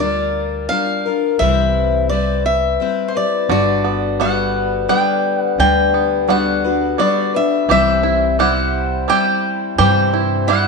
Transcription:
Already playing: upright bass D2
0.00 twelve-string acoustic guitar G3 D4 F4 A#4, steel-string acoustic guitar D5
0.69 twelve-string acoustic guitar G3 D4 F4 A#4, steel-string acoustic guitar F5
1.06 twelve-string acoustic guitar D4 F4 A#4
1.39 upright bass C2, twelve-string acoustic guitar C3 E3 G3 C4 E4 B4, steel-string acoustic guitar E5
2.09 twelve-string acoustic guitar G3 C4 E4, steel-string acoustic guitar D5
2.14 twelve-string acoustic guitar B4
2.46 steel-string acoustic guitar E5
2.80 twelve-string acoustic guitar G3 C4 E4 B4
3.08 steel-string acoustic guitar C5
3.15 twelve-string acoustic guitar G3 C4 E4 B4, steel-string acoustic guitar D5
3.49 upright bass G1, five-string banjo D3 F#4, twelve-string acoustic guitar G3 D4 F#4 B4, steel-string acoustic guitar D5
3.85 five-string banjo B3
4.20 five-string banjo G3 B3 F#4, twelve-string acoustic guitar G3 D4 F#4 B4, steel-string acoustic guitar F#5
4.88 twelve-string acoustic guitar G3 D4 B4, five-string banjo G3 B3, steel-string acoustic guitar G5
5.39 steel-string acoustic guitar F#5
5.58 upright bass D2, five-string banjo D3, twelve-string acoustic guitar G3 D4 B4, steel-string acoustic guitar G5
5.94 five-string banjo B3
6.28 twelve-string acoustic guitar G3 D4 F#4 B4, five-string banjo G3 B3 F#4, steel-string acoustic guitar F#5
6.64 twelve-string acoustic guitar D4 F#4 B4
6.98 five-string banjo G3 B3 F#4, twelve-string acoustic guitar G3 D4 F#4 B4, steel-string acoustic guitar D5
7.34 twelve-string acoustic guitar D4 F#4 B4, steel-string acoustic guitar E5
7.68 upright bass C2, twelve-string acoustic guitar C3 E3 G3 C4 E4 C5, five-string banjo E3 G4, steel-string acoustic guitar E5
8.03 five-string banjo E4
8.39 five-string banjo G3 E4 G4, twelve-string acoustic guitar G3 C4 E4 C5, steel-string acoustic guitar F#5
9.08 five-string banjo G3 E4 G4, twelve-string acoustic guitar G3 C4 E4 C5, steel-string acoustic guitar G5
9.78 upright bass G2, twelve-string acoustic guitar C3 E3 G3 C4 E4 C5, five-string banjo E3 G4, steel-string acoustic guitar G5
10.14 five-string banjo E4
10.47 twelve-string acoustic guitar G3 C4 E4 C5, five-string banjo G3 E4 G4, steel-string acoustic guitar F#5

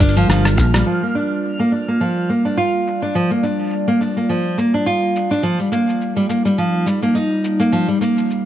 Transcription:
Already playing: fingered electric bass G1, ambient pad G3 D4 F4 A#4, synth texture F6
0.00 nylon-string guitar D4, kick, open hi-hat, cabasa
0.09 open hi-hat
0.17 nylon-string guitar F3, open hi-hat, cabasa
0.29 fingered electric bass G1, nylon-string guitar F3, cross-stick, open hi-hat, cabasa
0.45 cross-stick
0.57 fingered electric bass A#1, kick, open hi-hat, cabasa
0.74 nylon-string guitar G3, cross-stick, open hi-hat, cabasa
0.86 nylon-string guitar F3, ambient pad G3, cabasa
1.03 nylon-string guitar A#3
1.15 nylon-string guitar D4, cabasa
1.32 cabasa
1.44 cabasa
1.59 nylon-string guitar A#3
1.72 nylon-string guitar D4, cabasa
1.88 nylon-string guitar A#3, cabasa
2.01 nylon-string guitar F3, cabasa
2.29 nylon-string guitar A#3, ambient pad D5, cabasa
2.45 nylon-string guitar D4, cabasa
2.57 nylon-string guitar F4
2.87 cabasa
3.02 nylon-string guitar D4, cabasa
3.15 nylon-string guitar F3, cabasa
3.31 nylon-string guitar A#3
3.43 nylon-string guitar D4, cabasa
3.60 cabasa
3.63 cabasa
3.66 cabasa
3.69 cabasa
3.73 cabasa
3.88 nylon-string guitar A#3
4.01 nylon-string guitar D4, cabasa
4.17 nylon-string guitar A#3, cabasa
4.29 nylon-string guitar F3, cabasa
4.58 nylon-string guitar A#3, cabasa
4.74 nylon-string guitar D4
4.86 nylon-string guitar F4, cabasa
5.16 cabasa
5.31 nylon-string guitar D4, cabasa
5.43 nylon-string guitar F3, cabasa
5.59 nylon-string guitar G3
5.72 nylon-string guitar A#3, cabasa
5.89 cabasa
6.01 ambient pad D#4, cabasa
6.16 nylon-string guitar G3
6.29 nylon-string guitar A#3, cabasa
6.45 nylon-string guitar G3, cabasa
6.58 nylon-string guitar F3, cabasa
6.86 nylon-string guitar G3, cabasa
7.03 nylon-string guitar A#3, cabasa
7.15 nylon-string guitar D#4, cabasa
7.44 cabasa
7.60 nylon-string guitar A#3, cabasa
7.72 nylon-string guitar F3, cabasa
7.88 nylon-string guitar G3
8.01 nylon-string guitar A#3, cabasa
8.17 cabasa
8.30 cabasa

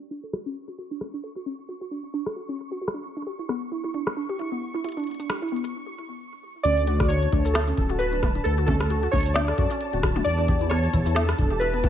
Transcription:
Already playing: synth texture C#6
0.01 closed hi-hat
0.11 synth pluck D4
0.23 synth pluck A4, closed hi-hat
0.28 closed hi-hat
0.33 synth pluck F#4, cross-stick
0.46 synth pluck C#4
0.68 synth pluck F#4, closed hi-hat
0.78 synth pluck F#4, closed hi-hat
0.91 synth pluck D4
1.01 cross-stick
1.14 synth pluck D4
1.19 closed hi-hat
1.23 synth pluck A4, closed hi-hat
1.36 synth pluck F#4, closed hi-hat
1.39 closed hi-hat
1.41 closed hi-hat
1.44 synth pluck C#4, closed hi-hat
1.46 closed hi-hat
1.49 closed hi-hat
1.52 closed hi-hat
1.55 closed hi-hat
1.59 closed hi-hat
1.69 synth pluck F#4, closed hi-hat
1.81 synth pluck F#4, closed hi-hat
1.91 synth pluck D4
2.04 closed hi-hat
2.14 synth pluck D4, closed hi-hat
2.26 synth pluck A4, cross-stick
2.36 synth pluck F#4
2.49 synth pluck C#4, closed hi-hat
2.59 closed hi-hat
2.71 synth pluck F#4
2.81 synth pluck F#4
2.88 cross-stick
2.94 synth pluck D4
3.04 closed hi-hat
3.17 synth pluck D4, closed hi-hat
3.27 synth pluck G4
3.39 synth pluck E4, closed hi-hat
3.49 synth pluck B3, cross-stick, closed hi-hat
3.62 closed hi-hat
3.72 synth pluck E4
3.84 synth pluck E4, closed hi-hat
3.94 synth pluck D4, closed hi-hat
4.07 cross-stick
4.17 synth pluck D4
4.29 synth pluck G4, closed hi-hat
4.39 synth pluck E4, closed hi-hat
4.52 synth pluck B3
4.74 synth pluck E4
4.84 synth pluck E4, closed hi-hat
4.89 closed hi-hat
4.92 closed hi-hat
4.97 synth pluck D4, closed hi-hat
5.00 closed hi-hat
5.04 closed hi-hat
5.07 closed hi-hat
5.11 closed hi-hat
5.15 closed hi-hat
5.20 synth pluck D4, closed hi-hat
5.29 synth pluck G4, cross-stick, closed hi-hat
5.42 synth pluck E4, closed hi-hat
5.49 synth pluck B3, closed hi-hat
5.56 closed hi-hat
5.65 closed hi-hat
6.63 detuned saw bass D2, synth pluck C#4, synth keys D5, synth texture A5, closed hi-hat
6.77 closed hi-hat
6.87 synth pluck F#4, closed hi-hat
7.00 synth pluck F#4, kick, cross-stick, closed hi-hat
7.08 synth pluck D4, synth keys C#5, closed hi-hat
7.23 closed hi-hat
7.32 detuned saw bass D2, synth pluck D4, kick, closed hi-hat
7.45 synth pluck A4, closed hi-hat, cabasa
7.54 synth pluck F#4, synth keys A4, cross-stick, snare, closed hi-hat
7.68 synth pluck C#4, closed hi-hat, cabasa
7.78 detuned saw bass D1, kick, closed hi-hat
7.90 synth pluck F#4, closed hi-hat
7.99 synth pluck F#4, synth keys B4, closed hi-hat
8.13 synth pluck D4, closed hi-hat
8.23 kick, cross-stick, closed hi-hat, high tom
8.35 synth pluck D4, closed hi-hat
8.44 detuned saw bass D2, synth keys A4, synth pluck A4, closed hi-hat
8.58 synth pluck F#4, closed hi-hat
8.66 synth pluck C#4, synth keys A4, kick, closed hi-hat, high tom
8.80 cross-stick, closed hi-hat
8.90 synth pluck F#4, closed hi-hat
9.03 synth pluck F#4, closed hi-hat
9.11 detuned saw bass D2, synth pluck D4, synth keys C#5, kick, closed hi-hat, high tom
9.16 closed hi-hat
9.18 closed hi-hat
9.21 closed hi-hat
9.23 closed hi-hat, cabasa
9.34 synth pluck D4, synth keys D5, snare, closed hi-hat
9.48 synth pluck A4, cross-stick, closed hi-hat
9.58 detuned saw bass F#2, synth pluck F#4, kick, closed hi-hat
9.71 synth pluck C#4, closed hi-hat, cabasa
9.81 closed hi-hat
9.93 detuned saw bass D1, synth pluck F#4, closed hi-hat
10.03 synth pluck F#4, kick, cross-stick, closed hi-hat
10.16 synth pluck D4, closed hi-hat, high tom
10.24 detuned saw bass E2, synth keys D5, closed hi-hat
10.38 synth pluck D4, closed hi-hat
10.48 synth pluck G4, kick, closed hi-hat
10.61 synth pluck E4, closed hi-hat
10.69 synth pluck B3, synth keys C#5, cross-stick, closed hi-hat
10.84 closed hi-hat
10.93 detuned saw bass E2, synth pluck E4, kick, closed hi-hat
10.96 kick
10.98 kick
11.01 kick
11.04 synth pluck E4, kick, closed hi-hat, cabasa
11.15 synth pluck D4, synth keys A4, snare, closed hi-hat
11.29 cross-stick, closed hi-hat, cabasa
11.39 detuned saw bass E1, synth pluck D4, kick, closed hi-hat
11.42 kick
11.45 kick
11.48 synth pluck G4, kick
11.60 synth pluck E4, synth keys B4, closed hi-hat
11.74 synth pluck B3, closed hi-hat
11.84 kick, closed hi-hat, high tom

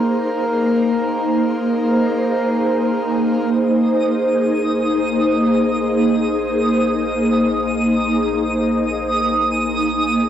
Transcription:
Already playing: harmonium A#3 A#4, ambient pad A#3 D#4 G#4 C5
3.38 synth drone A#1, synth texture D#6

